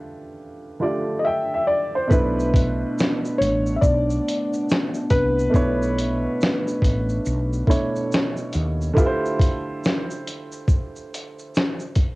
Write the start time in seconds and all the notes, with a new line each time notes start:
Already playing: D3 A3 D4 F4 G4 B4 F5
0.80 D3 A3 D4 F4 G4 D5
1.19 D#5
1.25 E5 G5
1.54 E5
1.67 D5
1.95 C5
2.07 B2 A3 B3 D4 B4, kick
2.12 B1 E4 B4, shaker
2.40 shaker
2.54 kick, closed hi-hat, shaker
2.98 snare, shaker
3.25 shaker
3.38 A1 C#5, closed hi-hat, shaker
3.66 shaker
3.76 E5
3.81 B1 D5, kick, shaker
4.10 shaker
4.28 closed hi-hat, shaker
4.53 shaker
4.69 snare, shaker
4.94 shaker
5.10 C2 B4, kick, closed hi-hat, shaker
5.39 shaker
5.49 B2 A3 D4
5.54 B1 E4 C#5, kick, shaker
5.82 shaker
5.98 closed hi-hat, shaker
6.41 snare, shaker
6.68 shaker
6.82 A1, kick, closed hi-hat, shaker
7.09 shaker
7.25 B1, shaker
7.53 shaker
7.67 B2 A3 D4 E4 C#5, kick
7.71 closed hi-hat, shaker
7.96 shaker
8.12 snare, shaker
8.37 shaker
8.53 D#2, closed hi-hat, shaker
8.81 shaker
8.93 D3 A3 E4 F4, kick, shaker
8.99 G4 B4
9.06 C5
9.25 shaker
9.39 kick, closed hi-hat, shaker
9.84 snare, shaker
10.10 shaker
10.27 closed hi-hat, shaker
10.52 shaker
10.68 kick, shaker
10.96 shaker
11.14 closed hi-hat, shaker
11.39 shaker
11.55 snare, shaker
11.80 shaker
11.95 kick, closed hi-hat, shaker